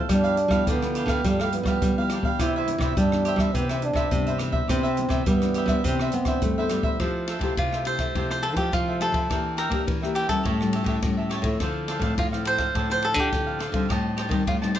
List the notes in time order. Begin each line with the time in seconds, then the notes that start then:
0.09 G2 F3 G3 B3 D4 E4 G4 B4 F5, kick, cross-stick, closed hi-hat
0.24 G4 B4 F5, closed hi-hat
0.37 muted cavaquinho stroke, closed hi-hat
0.48 F3 G3 B3 E4 B4 F5, kick, cross-stick, closed hi-hat
0.53 G4
0.67 D3 B3 D4 G4 B4 F5, kick, closed hi-hat
0.82 F3 B3 E4, cross-stick, closed hi-hat
0.95 D4 G4 B4 F5, closed hi-hat
1.06 D3 F5, kick, cross-stick, closed hi-hat
1.10 G4 B4
1.24 G2 F3 G3 B3 D4 E4 G4 B4 F5, kick, closed hi-hat
1.39 A3 G4 B4 F5, cross-stick
1.52 F3 B3 E4, muted cavaquinho stroke, closed hi-hat
1.63 G3 F5, kick, cross-stick, closed hi-hat
1.68 G4 B4
1.82 D3 G3, kick, closed hi-hat
1.97 F3 B3 E4 G4 B4 F5
2.10 D4 G4, cross-stick, closed hi-hat
2.14 B4 F5
2.22 E3 B3 D4 B4 F5, kick
2.27 G4
2.39 C3 E4 G4 B4 C5 E5, kick, cross-stick, closed hi-hat
2.56 B4 C5 E5
2.67 E3 B3 D4, muted cavaquinho stroke, closed hi-hat
2.78 C3 E5, kick, cross-stick, closed hi-hat
2.83 B4 C5
2.97 G2 G3 D4 G4 B4 C5 E5, kick, closed hi-hat
3.12 E3 B3 D4, cross-stick
3.25 G4 B4 C5 E5, closed hi-hat
3.36 G3 E5, kick, cross-stick
3.41 B4 C5
3.54 C3 E3 B3 D4 G4 B4 C5, kick, closed hi-hat
3.58 E5
3.69 C4 B4 C5 E5, cross-stick, closed hi-hat
3.82 D4, muted cavaquinho stroke, closed hi-hat
3.93 C3 B4 E5, kick, cross-stick
3.98 C5
4.11 G2 C3 E3 B3 D4, kick, closed hi-hat
4.27 B4 C5 E5, closed hi-hat
4.38 E3 B3 D4 G4 B4 C5 E5, cross-stick, closed hi-hat
4.52 B4 C5 E5, kick
4.68 C3 E3 B3 C4 D4 G4 B4 C5 E5, kick, cross-stick, closed hi-hat
4.83 B4 C5 E5, closed hi-hat
4.97 E3 B3 D4, muted cavaquinho stroke, closed hi-hat
5.09 C3 B4 C5 E5, kick, cross-stick, closed hi-hat
5.26 G2 G3 B3 G4 B4 C5 E5, kick, closed hi-hat
5.42 E3 B3 D4, cross-stick, closed hi-hat
5.54 G4 B4 C5 E5, closed hi-hat
5.66 E3 G3 B3 B4 E5, kick, cross-stick, closed hi-hat
5.70 D4 C5
5.84 C3 E3 B3 C4 D4 G4 B4 C5, kick, closed hi-hat
5.88 E5
5.99 B4 E5, cross-stick
6.04 C5
6.12 B3, muted cavaquinho stroke, closed hi-hat
6.25 E3 B3 D4 B4 C5 E5, kick, cross-stick, closed hi-hat
6.42 G2 A3, kick, closed hi-hat
6.58 E3 B3 D4 B4 C5 E5
6.69 G3 G4 B4 C5 E5, cross-stick, closed hi-hat
6.83 B4 C5 E5, kick
6.99 F3 A3 E4 F4 G4 A4 C5 E5, kick, cross-stick, ride
7.28 F4 A4 C5 E5, cross-stick, ride
7.39 C3 A3 E4 F4 G4 A4, kick, ride
7.43 C5 E5
7.57 C3 F4, kick, ride
7.72 A4 C5 E5, cross-stick
7.85 A3 E4 F4 G4 A4 C5 E5, ride
7.99 A4 C5 E5, kick, cross-stick, ride
8.15 C3 F3 A3 E4 F4 G4 A4 C5 E5, kick, ride
8.30 C5, cross-stick
8.43 F4 A4 C5 E5, ride
8.55 F3 A3 E4 F4 G4 A4 C5, kick, ride
8.59 E5
8.72 C3 F3 F4, kick, cross-stick, ride
8.88 A4 C5 E5
9.00 A3 E4 F4 G4 A4 C5 E5, cross-stick, ride
9.12 F3 C5 E5, kick, ride
9.16 A4
9.29 E3 A#3 D4 G4 A#4 E5 G5, kick, cross-stick, ride
9.57 D4 A#4 E5 G5, cross-stick, ride
9.69 A#3 D4 G4 A#4 E5 G5, kick, ride
9.87 E3, kick, ride
10.02 A#3 D4 G4 A#4 E5 G5, cross-stick
10.14 D4 G4 A#4 E5 G5, ride
10.27 G3 C#4 E4 A4 A#4 E5 G5, kick, cross-stick, ride
10.43 A2 G4 A4 C#5 E5, kick, ride
10.61 G3 C#4 E4, cross-stick
10.73 G4 A4 C#5 E5, ride
10.84 A2 G4 A4 C#5 E5, kick, ride
11.02 A2 E3 G3 C#4 E4, kick, cross-stick, ride
11.17 A4 C#5 E5
11.29 G4 A4 C#5 E5, cross-stick, ride
11.42 A2 F3 C4 E4 A4 C#5 E5, kick, ride
11.60 D3 D4 A4 C5 F5, kick, cross-stick, ride
11.88 D4 A4 C5 F5, cross-stick, ride
11.99 A2 F3 C4 D4 E4 A4 C5 F5, kick, ride
12.18 A2 F4, kick, ride
12.32 F3 C4 E4 A4 C5 F5, cross-stick
12.44 D4 A4 C5 F5, ride
12.58 A4 C5 F5, kick, cross-stick, ride
12.75 A2 D3 D4 A4 C5 F5, kick, ride
12.90 F3 C4 E4 C5, cross-stick
13.02 D4 A4 C5 F5, ride
13.14 D3 D4 A4 C5 F5, kick, ride
13.20 G4
13.33 A2 D3 F3 C4 E4, kick, cross-stick, ride
13.46 A4 C5 F5
13.59 D4 A4 C5 F5, cross-stick, ride
13.72 D3 G3 C4 D#4 C5 F5, kick, ride
13.76 A4
13.89 A2 G4 C5 D#5 A5, kick, cross-stick, ride
14.17 G4 C5 D#5 A5, cross-stick, ride
14.29 D#3 G3 C4 D#4 G4 C5 D#5 A5, kick, ride
14.47 A2 F4, kick, ride
14.62 G3 C4 D#4 C5 D#5 A5, cross-stick
14.75 G4 C5, ride